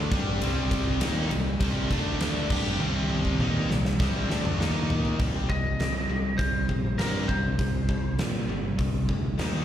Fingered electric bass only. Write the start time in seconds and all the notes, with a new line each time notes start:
0.11 G2
0.42 C2
1.01 D#2
1.31 C2
1.60 C2
1.90 D2
2.50 G2
2.79 C2
3.39 D#2
3.69 C2
4.00 C2
4.29 D2
4.59 D#2
5.20 C2
5.49 C2
5.80 C2
6.09 C2
6.39 C2
6.70 A#1
6.99 G2
7.29 C2
7.59 C2
7.89 C2
8.19 A#2
8.49 G1
8.79 C2
9.09 D2
9.39 D#2